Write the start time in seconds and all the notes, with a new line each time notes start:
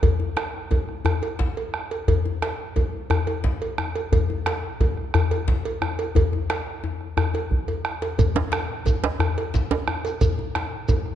0.03 bombo rim, bombo low, cowbell, djembe slap, djembe bass
0.20 djembe slap, djembe tone
0.37 bombo rim, cowbell, djembe slap
0.71 bombo low, cowbell, djembe tone
0.89 bombo rim
1.05 bombo rim, cowbell, djembe bass
1.22 cowbell, djembe tone
1.39 bombo low, djembe slap
1.57 cowbell
1.74 bombo rim
1.91 cowbell
2.08 bombo rim, bombo low, cowbell, djembe slap, djembe bass
2.26 djembe slap, djembe tone
2.42 bombo rim, cowbell, djembe slap
2.76 bombo low, cowbell, djembe tone
3.10 bombo rim, cowbell, djembe bass
3.27 cowbell, djembe tone
3.44 bombo low, djembe slap
3.62 cowbell
3.78 bombo rim, djembe tone
3.95 cowbell
4.12 bombo rim, bombo low, cowbell, djembe slap, djembe bass
4.30 djembe slap, djembe tone
4.46 bombo rim, cowbell, djembe slap
4.80 bombo low, cowbell, djembe tone
4.97 bombo rim
5.14 bombo rim, cowbell, djembe bass
5.31 cowbell, djembe tone
5.48 bombo low, djembe slap
5.65 cowbell
5.82 bombo rim, djembe tone
5.99 cowbell
6.15 bombo rim, bombo low, cowbell, djembe bass
6.33 djembe slap, djembe tone
6.50 bombo rim, cowbell, djembe slap
6.67 djembe slap
6.84 djembe tone
7.01 bombo rim
7.17 bombo rim, cowbell, djembe bass
7.34 cowbell, djembe slap, djembe tone
7.51 bombo low, djembe bass
7.68 cowbell, djembe bass
7.85 bombo rim, djembe slap
8.02 bombo rim, cowbell, djembe slap
8.19 bombo rim, bombo low, cowbell, djembe slap, djembe bass, shekere
8.35 djembe slap, djembe tone
8.52 bombo rim, cowbell, djembe slap
8.85 bombo low, cowbell, djembe tone, shekere
9.03 bombo rim, djembe slap
9.20 bombo rim, cowbell, djembe bass
9.38 cowbell
9.54 bombo low, djembe slap, shekere
9.71 cowbell, djembe slap
9.88 bombo rim, djembe tone
10.05 cowbell, shekere
10.21 bombo rim, bombo low, cowbell, djembe slap, djembe bass, shekere
10.39 djembe slap, djembe tone
10.55 bombo rim, djembe slap
10.88 bombo low, cowbell, djembe tone, shekere
11.06 bombo rim